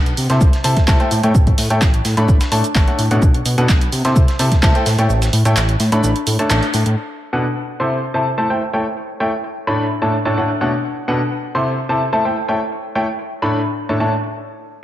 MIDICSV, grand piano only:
0, 0, Header, 1, 2, 480
1, 0, Start_track
1, 0, Tempo, 468750
1, 1379, Time_signature, 4, 2, 24, 8
1, 15192, End_track
2, 0, Start_track
2, 0, Title_t, "Grand piano"
2, 0, Program_c, 0, 0
2, 304, Note_on_c, 0, 48, 92
2, 304, Note_on_c, 0, 64, 88
2, 304, Note_on_c, 0, 72, 87
2, 304, Note_on_c, 0, 84, 102
2, 305, Note_on_c, 0, 69, 85
2, 474, Note_off_c, 0, 64, 0
2, 474, Note_off_c, 0, 72, 0
2, 474, Note_off_c, 0, 84, 0
2, 475, Note_off_c, 0, 48, 0
2, 475, Note_off_c, 0, 69, 0
2, 656, Note_on_c, 0, 81, 93
2, 657, Note_on_c, 0, 48, 85
2, 657, Note_on_c, 0, 64, 79
2, 657, Note_on_c, 0, 69, 78
2, 657, Note_on_c, 0, 72, 78
2, 772, Note_off_c, 0, 48, 0
2, 772, Note_off_c, 0, 64, 0
2, 772, Note_off_c, 0, 69, 0
2, 772, Note_off_c, 0, 72, 0
2, 772, Note_off_c, 0, 81, 0
2, 897, Note_on_c, 0, 57, 92
2, 897, Note_on_c, 0, 64, 82
2, 898, Note_on_c, 0, 69, 84
2, 898, Note_on_c, 0, 72, 81
2, 898, Note_on_c, 0, 81, 97
2, 1006, Note_off_c, 0, 57, 0
2, 1006, Note_off_c, 0, 64, 0
2, 1006, Note_off_c, 0, 69, 0
2, 1006, Note_off_c, 0, 72, 0
2, 1006, Note_off_c, 0, 81, 0
2, 1024, Note_on_c, 0, 57, 75
2, 1024, Note_on_c, 0, 69, 69
2, 1024, Note_on_c, 0, 79, 78
2, 1025, Note_on_c, 0, 64, 65
2, 1025, Note_on_c, 0, 72, 67
2, 1125, Note_off_c, 0, 57, 0
2, 1125, Note_off_c, 0, 64, 0
2, 1125, Note_off_c, 0, 69, 0
2, 1125, Note_off_c, 0, 72, 0
2, 1125, Note_off_c, 0, 79, 0
2, 1263, Note_on_c, 0, 69, 74
2, 1263, Note_on_c, 0, 79, 92
2, 1264, Note_on_c, 0, 57, 83
2, 1264, Note_on_c, 0, 64, 76
2, 1264, Note_on_c, 0, 73, 77
2, 1367, Note_off_c, 0, 57, 0
2, 1367, Note_off_c, 0, 64, 0
2, 1367, Note_off_c, 0, 69, 0
2, 1367, Note_off_c, 0, 73, 0
2, 1367, Note_off_c, 0, 79, 0
2, 1744, Note_on_c, 0, 64, 90
2, 1744, Note_on_c, 0, 73, 87
2, 1745, Note_on_c, 0, 57, 97
2, 1745, Note_on_c, 0, 69, 88
2, 1745, Note_on_c, 0, 79, 104
2, 1847, Note_off_c, 0, 64, 0
2, 1847, Note_off_c, 0, 69, 0
2, 1847, Note_off_c, 0, 73, 0
2, 1848, Note_off_c, 0, 57, 0
2, 1848, Note_off_c, 0, 79, 0
2, 2224, Note_on_c, 0, 69, 87
2, 2224, Note_on_c, 0, 83, 107
2, 2225, Note_on_c, 0, 57, 93
2, 2225, Note_on_c, 0, 62, 86
2, 2225, Note_on_c, 0, 73, 86
2, 2394, Note_off_c, 0, 83, 0
2, 2395, Note_off_c, 0, 57, 0
2, 2395, Note_off_c, 0, 62, 0
2, 2395, Note_off_c, 0, 69, 0
2, 2395, Note_off_c, 0, 73, 0
2, 2578, Note_on_c, 0, 57, 84
2, 2578, Note_on_c, 0, 62, 79
2, 2578, Note_on_c, 0, 69, 79
2, 2578, Note_on_c, 0, 73, 80
2, 2578, Note_on_c, 0, 81, 94
2, 2692, Note_off_c, 0, 69, 0
2, 2692, Note_off_c, 0, 73, 0
2, 2692, Note_off_c, 0, 81, 0
2, 2693, Note_off_c, 0, 57, 0
2, 2693, Note_off_c, 0, 62, 0
2, 2819, Note_on_c, 0, 57, 92
2, 2819, Note_on_c, 0, 69, 87
2, 2819, Note_on_c, 0, 73, 85
2, 2819, Note_on_c, 0, 81, 102
2, 2820, Note_on_c, 0, 62, 83
2, 2926, Note_off_c, 0, 69, 0
2, 2927, Note_off_c, 0, 57, 0
2, 2927, Note_off_c, 0, 62, 0
2, 2927, Note_off_c, 0, 73, 0
2, 2927, Note_off_c, 0, 81, 0
2, 2946, Note_on_c, 0, 57, 74
2, 2946, Note_on_c, 0, 62, 69
2, 2946, Note_on_c, 0, 69, 70
2, 2946, Note_on_c, 0, 73, 68
2, 2946, Note_on_c, 0, 78, 83
2, 3048, Note_off_c, 0, 57, 0
2, 3048, Note_off_c, 0, 62, 0
2, 3048, Note_off_c, 0, 69, 0
2, 3048, Note_off_c, 0, 73, 0
2, 3048, Note_off_c, 0, 78, 0
2, 3185, Note_on_c, 0, 78, 94
2, 3186, Note_on_c, 0, 47, 84
2, 3186, Note_on_c, 0, 62, 77
2, 3186, Note_on_c, 0, 69, 79
2, 3186, Note_on_c, 0, 73, 78
2, 3285, Note_off_c, 0, 78, 0
2, 3286, Note_off_c, 0, 47, 0
2, 3286, Note_off_c, 0, 62, 0
2, 3286, Note_off_c, 0, 69, 0
2, 3286, Note_off_c, 0, 73, 0
2, 3664, Note_on_c, 0, 47, 96
2, 3665, Note_on_c, 0, 62, 88
2, 3665, Note_on_c, 0, 69, 89
2, 3665, Note_on_c, 0, 71, 87
2, 3665, Note_on_c, 0, 78, 107
2, 3767, Note_off_c, 0, 47, 0
2, 3767, Note_off_c, 0, 62, 0
2, 3767, Note_off_c, 0, 78, 0
2, 3768, Note_off_c, 0, 69, 0
2, 3768, Note_off_c, 0, 71, 0
2, 4145, Note_on_c, 0, 69, 86
2, 4145, Note_on_c, 0, 72, 89
2, 4145, Note_on_c, 0, 84, 103
2, 4146, Note_on_c, 0, 48, 98
2, 4146, Note_on_c, 0, 64, 90
2, 4315, Note_off_c, 0, 48, 0
2, 4315, Note_off_c, 0, 64, 0
2, 4315, Note_off_c, 0, 69, 0
2, 4315, Note_off_c, 0, 72, 0
2, 4315, Note_off_c, 0, 84, 0
2, 4499, Note_on_c, 0, 81, 95
2, 4500, Note_on_c, 0, 48, 87
2, 4500, Note_on_c, 0, 64, 80
2, 4500, Note_on_c, 0, 69, 80
2, 4500, Note_on_c, 0, 72, 80
2, 4613, Note_off_c, 0, 48, 0
2, 4613, Note_off_c, 0, 69, 0
2, 4613, Note_off_c, 0, 72, 0
2, 4613, Note_off_c, 0, 81, 0
2, 4614, Note_off_c, 0, 64, 0
2, 4738, Note_on_c, 0, 64, 86
2, 4739, Note_on_c, 0, 57, 94
2, 4739, Note_on_c, 0, 69, 85
2, 4739, Note_on_c, 0, 72, 87
2, 4739, Note_on_c, 0, 81, 101
2, 4846, Note_off_c, 0, 57, 0
2, 4846, Note_off_c, 0, 64, 0
2, 4846, Note_off_c, 0, 69, 0
2, 4846, Note_off_c, 0, 72, 0
2, 4847, Note_off_c, 0, 81, 0
2, 4867, Note_on_c, 0, 57, 75
2, 4867, Note_on_c, 0, 64, 67
2, 4867, Note_on_c, 0, 69, 68
2, 4867, Note_on_c, 0, 72, 67
2, 4867, Note_on_c, 0, 79, 81
2, 4966, Note_off_c, 0, 57, 0
2, 4966, Note_off_c, 0, 64, 0
2, 4966, Note_off_c, 0, 69, 0
2, 4966, Note_off_c, 0, 72, 0
2, 4966, Note_off_c, 0, 79, 0
2, 5105, Note_on_c, 0, 64, 78
2, 5105, Note_on_c, 0, 69, 78
2, 5105, Note_on_c, 0, 73, 78
2, 5106, Note_on_c, 0, 57, 87
2, 5106, Note_on_c, 0, 79, 94
2, 5208, Note_off_c, 0, 57, 0
2, 5208, Note_off_c, 0, 64, 0
2, 5208, Note_off_c, 0, 69, 0
2, 5208, Note_off_c, 0, 73, 0
2, 5208, Note_off_c, 0, 79, 0
2, 5584, Note_on_c, 0, 57, 98
2, 5584, Note_on_c, 0, 64, 88
2, 5584, Note_on_c, 0, 69, 90
2, 5584, Note_on_c, 0, 73, 89
2, 5584, Note_on_c, 0, 79, 105
2, 5687, Note_off_c, 0, 57, 0
2, 5687, Note_off_c, 0, 64, 0
2, 5687, Note_off_c, 0, 69, 0
2, 5687, Note_off_c, 0, 73, 0
2, 5687, Note_off_c, 0, 79, 0
2, 6064, Note_on_c, 0, 57, 94
2, 6064, Note_on_c, 0, 62, 88
2, 6064, Note_on_c, 0, 69, 89
2, 6064, Note_on_c, 0, 73, 90
2, 6065, Note_on_c, 0, 83, 105
2, 6234, Note_off_c, 0, 73, 0
2, 6235, Note_off_c, 0, 57, 0
2, 6235, Note_off_c, 0, 62, 0
2, 6235, Note_off_c, 0, 69, 0
2, 6235, Note_off_c, 0, 83, 0
2, 6544, Note_on_c, 0, 69, 77
2, 6545, Note_on_c, 0, 57, 82
2, 6545, Note_on_c, 0, 62, 78
2, 6545, Note_on_c, 0, 73, 75
2, 6545, Note_on_c, 0, 81, 91
2, 6641, Note_off_c, 0, 69, 0
2, 6642, Note_off_c, 0, 57, 0
2, 6642, Note_off_c, 0, 62, 0
2, 6642, Note_off_c, 0, 73, 0
2, 6642, Note_off_c, 0, 81, 0
2, 6658, Note_on_c, 0, 57, 87
2, 6658, Note_on_c, 0, 69, 78
2, 6658, Note_on_c, 0, 73, 79
2, 6658, Note_on_c, 0, 81, 96
2, 6659, Note_on_c, 0, 62, 78
2, 6773, Note_off_c, 0, 57, 0
2, 6773, Note_off_c, 0, 62, 0
2, 6773, Note_off_c, 0, 69, 0
2, 6773, Note_off_c, 0, 73, 0
2, 6773, Note_off_c, 0, 81, 0
2, 7504, Note_on_c, 0, 47, 88
2, 7504, Note_on_c, 0, 69, 81
2, 7504, Note_on_c, 0, 71, 81
2, 7505, Note_on_c, 0, 62, 81
2, 7505, Note_on_c, 0, 78, 95
2, 7607, Note_off_c, 0, 47, 0
2, 7607, Note_off_c, 0, 62, 0
2, 7607, Note_off_c, 0, 69, 0
2, 7607, Note_off_c, 0, 71, 0
2, 7608, Note_off_c, 0, 78, 0
2, 7985, Note_on_c, 0, 48, 84
2, 7985, Note_on_c, 0, 64, 79
2, 7985, Note_on_c, 0, 69, 80
2, 7985, Note_on_c, 0, 84, 98
2, 7986, Note_on_c, 0, 72, 79
2, 8155, Note_off_c, 0, 48, 0
2, 8155, Note_off_c, 0, 64, 0
2, 8155, Note_off_c, 0, 69, 0
2, 8155, Note_off_c, 0, 72, 0
2, 8155, Note_off_c, 0, 84, 0
2, 8336, Note_on_c, 0, 64, 73
2, 8337, Note_on_c, 0, 48, 80
2, 8337, Note_on_c, 0, 69, 71
2, 8337, Note_on_c, 0, 72, 74
2, 8337, Note_on_c, 0, 81, 89
2, 8452, Note_off_c, 0, 48, 0
2, 8452, Note_off_c, 0, 64, 0
2, 8452, Note_off_c, 0, 69, 0
2, 8452, Note_off_c, 0, 72, 0
2, 8452, Note_off_c, 0, 81, 0
2, 8578, Note_on_c, 0, 57, 84
2, 8578, Note_on_c, 0, 64, 77
2, 8578, Note_on_c, 0, 69, 77
2, 8578, Note_on_c, 0, 72, 77
2, 8578, Note_on_c, 0, 81, 92
2, 8686, Note_off_c, 0, 57, 0
2, 8686, Note_off_c, 0, 64, 0
2, 8686, Note_off_c, 0, 69, 0
2, 8686, Note_off_c, 0, 72, 0
2, 8686, Note_off_c, 0, 81, 0
2, 8704, Note_on_c, 0, 57, 67
2, 8704, Note_on_c, 0, 69, 63
2, 8705, Note_on_c, 0, 64, 63
2, 8705, Note_on_c, 0, 72, 64
2, 8705, Note_on_c, 0, 79, 75
2, 8805, Note_off_c, 0, 57, 0
2, 8805, Note_off_c, 0, 64, 0
2, 8805, Note_off_c, 0, 69, 0
2, 8805, Note_off_c, 0, 72, 0
2, 8805, Note_off_c, 0, 79, 0
2, 8943, Note_on_c, 0, 69, 72
2, 8943, Note_on_c, 0, 73, 72
2, 8944, Note_on_c, 0, 57, 78
2, 8944, Note_on_c, 0, 64, 71
2, 8944, Note_on_c, 0, 79, 87
2, 9047, Note_off_c, 0, 57, 0
2, 9047, Note_off_c, 0, 64, 0
2, 9047, Note_off_c, 0, 69, 0
2, 9047, Note_off_c, 0, 73, 0
2, 9047, Note_off_c, 0, 79, 0
2, 9423, Note_on_c, 0, 57, 87
2, 9423, Note_on_c, 0, 64, 81
2, 9423, Note_on_c, 0, 69, 81
2, 9423, Note_on_c, 0, 73, 81
2, 9423, Note_on_c, 0, 79, 97
2, 9526, Note_off_c, 0, 69, 0
2, 9527, Note_off_c, 0, 57, 0
2, 9527, Note_off_c, 0, 64, 0
2, 9527, Note_off_c, 0, 73, 0
2, 9527, Note_off_c, 0, 79, 0
2, 9904, Note_on_c, 0, 62, 82
2, 9904, Note_on_c, 0, 69, 80
2, 9904, Note_on_c, 0, 83, 97
2, 9905, Note_on_c, 0, 45, 87
2, 9905, Note_on_c, 0, 57, 81
2, 9905, Note_on_c, 0, 73, 80
2, 10074, Note_off_c, 0, 62, 0
2, 10074, Note_off_c, 0, 69, 0
2, 10074, Note_off_c, 0, 83, 0
2, 10075, Note_off_c, 0, 45, 0
2, 10075, Note_off_c, 0, 57, 0
2, 10075, Note_off_c, 0, 73, 0
2, 10257, Note_on_c, 0, 45, 81
2, 10257, Note_on_c, 0, 69, 73
2, 10257, Note_on_c, 0, 73, 73
2, 10257, Note_on_c, 0, 81, 85
2, 10258, Note_on_c, 0, 57, 71
2, 10258, Note_on_c, 0, 62, 73
2, 10372, Note_off_c, 0, 45, 0
2, 10372, Note_off_c, 0, 62, 0
2, 10372, Note_off_c, 0, 69, 0
2, 10372, Note_off_c, 0, 73, 0
2, 10372, Note_off_c, 0, 81, 0
2, 10373, Note_off_c, 0, 57, 0
2, 10499, Note_on_c, 0, 45, 86
2, 10499, Note_on_c, 0, 57, 79
2, 10499, Note_on_c, 0, 73, 78
2, 10499, Note_on_c, 0, 81, 93
2, 10500, Note_on_c, 0, 62, 80
2, 10500, Note_on_c, 0, 69, 79
2, 10606, Note_off_c, 0, 57, 0
2, 10607, Note_off_c, 0, 45, 0
2, 10607, Note_off_c, 0, 62, 0
2, 10607, Note_off_c, 0, 69, 0
2, 10607, Note_off_c, 0, 73, 0
2, 10607, Note_off_c, 0, 81, 0
2, 10625, Note_on_c, 0, 57, 64
2, 10626, Note_on_c, 0, 45, 69
2, 10626, Note_on_c, 0, 62, 64
2, 10626, Note_on_c, 0, 69, 62
2, 10626, Note_on_c, 0, 73, 64
2, 10626, Note_on_c, 0, 78, 75
2, 10728, Note_off_c, 0, 45, 0
2, 10728, Note_off_c, 0, 57, 0
2, 10728, Note_off_c, 0, 62, 0
2, 10728, Note_off_c, 0, 69, 0
2, 10728, Note_off_c, 0, 73, 0
2, 10728, Note_off_c, 0, 78, 0
2, 10865, Note_on_c, 0, 47, 77
2, 10865, Note_on_c, 0, 57, 72
2, 10865, Note_on_c, 0, 62, 72
2, 10865, Note_on_c, 0, 69, 73
2, 10865, Note_on_c, 0, 73, 74
2, 10865, Note_on_c, 0, 78, 86
2, 10965, Note_off_c, 0, 47, 0
2, 10965, Note_off_c, 0, 57, 0
2, 10965, Note_off_c, 0, 62, 0
2, 10965, Note_off_c, 0, 69, 0
2, 10965, Note_off_c, 0, 73, 0
2, 10965, Note_off_c, 0, 78, 0
2, 11345, Note_on_c, 0, 62, 81
2, 11346, Note_on_c, 0, 47, 91
2, 11346, Note_on_c, 0, 69, 81
2, 11346, Note_on_c, 0, 71, 80
2, 11346, Note_on_c, 0, 78, 97
2, 11448, Note_off_c, 0, 47, 0
2, 11448, Note_off_c, 0, 62, 0
2, 11448, Note_off_c, 0, 69, 0
2, 11448, Note_off_c, 0, 71, 0
2, 11448, Note_off_c, 0, 78, 0
2, 11825, Note_on_c, 0, 48, 90
2, 11825, Note_on_c, 0, 64, 78
2, 11825, Note_on_c, 0, 69, 79
2, 11825, Note_on_c, 0, 72, 83
2, 11826, Note_on_c, 0, 84, 99
2, 11995, Note_off_c, 0, 48, 0
2, 11995, Note_off_c, 0, 64, 0
2, 11995, Note_off_c, 0, 69, 0
2, 11995, Note_off_c, 0, 72, 0
2, 11995, Note_off_c, 0, 84, 0
2, 12177, Note_on_c, 0, 48, 81
2, 12177, Note_on_c, 0, 64, 74
2, 12177, Note_on_c, 0, 72, 75
2, 12178, Note_on_c, 0, 69, 75
2, 12178, Note_on_c, 0, 81, 89
2, 12292, Note_off_c, 0, 48, 0
2, 12292, Note_off_c, 0, 64, 0
2, 12292, Note_off_c, 0, 69, 0
2, 12292, Note_off_c, 0, 72, 0
2, 12293, Note_off_c, 0, 81, 0
2, 12417, Note_on_c, 0, 64, 77
2, 12417, Note_on_c, 0, 69, 78
2, 12417, Note_on_c, 0, 72, 78
2, 12418, Note_on_c, 0, 57, 84
2, 12418, Note_on_c, 0, 81, 94
2, 12526, Note_off_c, 0, 57, 0
2, 12526, Note_off_c, 0, 64, 0
2, 12526, Note_off_c, 0, 69, 0
2, 12526, Note_off_c, 0, 72, 0
2, 12526, Note_off_c, 0, 81, 0
2, 12544, Note_on_c, 0, 57, 69
2, 12544, Note_on_c, 0, 64, 62
2, 12544, Note_on_c, 0, 69, 62
2, 12544, Note_on_c, 0, 79, 77
2, 12545, Note_on_c, 0, 72, 62
2, 12645, Note_off_c, 0, 57, 0
2, 12645, Note_off_c, 0, 64, 0
2, 12645, Note_off_c, 0, 69, 0
2, 12645, Note_off_c, 0, 72, 0
2, 12645, Note_off_c, 0, 79, 0
2, 12784, Note_on_c, 0, 57, 76
2, 12784, Note_on_c, 0, 64, 73
2, 12784, Note_on_c, 0, 69, 70
2, 12784, Note_on_c, 0, 73, 72
2, 12784, Note_on_c, 0, 79, 86
2, 12887, Note_off_c, 0, 57, 0
2, 12887, Note_off_c, 0, 64, 0
2, 12887, Note_off_c, 0, 69, 0
2, 12887, Note_off_c, 0, 73, 0
2, 12887, Note_off_c, 0, 79, 0
2, 13264, Note_on_c, 0, 57, 87
2, 13264, Note_on_c, 0, 79, 99
2, 13265, Note_on_c, 0, 64, 80
2, 13265, Note_on_c, 0, 69, 83
2, 13265, Note_on_c, 0, 73, 81
2, 13367, Note_off_c, 0, 57, 0
2, 13367, Note_off_c, 0, 79, 0
2, 13368, Note_off_c, 0, 64, 0
2, 13368, Note_off_c, 0, 69, 0
2, 13368, Note_off_c, 0, 73, 0
2, 13744, Note_on_c, 0, 45, 87
2, 13744, Note_on_c, 0, 57, 81
2, 13744, Note_on_c, 0, 69, 81
2, 13744, Note_on_c, 0, 73, 80
2, 13744, Note_on_c, 0, 83, 95
2, 13745, Note_on_c, 0, 62, 82
2, 13914, Note_off_c, 0, 45, 0
2, 13914, Note_off_c, 0, 69, 0
2, 13914, Note_off_c, 0, 73, 0
2, 13915, Note_off_c, 0, 57, 0
2, 13915, Note_off_c, 0, 62, 0
2, 13915, Note_off_c, 0, 83, 0
2, 14224, Note_on_c, 0, 57, 70
2, 14225, Note_on_c, 0, 45, 75
2, 14225, Note_on_c, 0, 62, 68
2, 14225, Note_on_c, 0, 69, 69
2, 14225, Note_on_c, 0, 73, 70
2, 14225, Note_on_c, 0, 81, 84
2, 14321, Note_off_c, 0, 57, 0
2, 14322, Note_off_c, 0, 45, 0
2, 14322, Note_off_c, 0, 62, 0
2, 14322, Note_off_c, 0, 69, 0
2, 14322, Note_off_c, 0, 73, 0
2, 14322, Note_off_c, 0, 81, 0
2, 14338, Note_on_c, 0, 45, 79
2, 14338, Note_on_c, 0, 57, 73
2, 14338, Note_on_c, 0, 62, 72
2, 14338, Note_on_c, 0, 69, 72
2, 14338, Note_on_c, 0, 73, 73
2, 14338, Note_on_c, 0, 81, 87
2, 14452, Note_off_c, 0, 57, 0
2, 14452, Note_off_c, 0, 69, 0
2, 14452, Note_off_c, 0, 73, 0
2, 14453, Note_off_c, 0, 45, 0
2, 14453, Note_off_c, 0, 62, 0
2, 14453, Note_off_c, 0, 81, 0
2, 15192, End_track
0, 0, End_of_file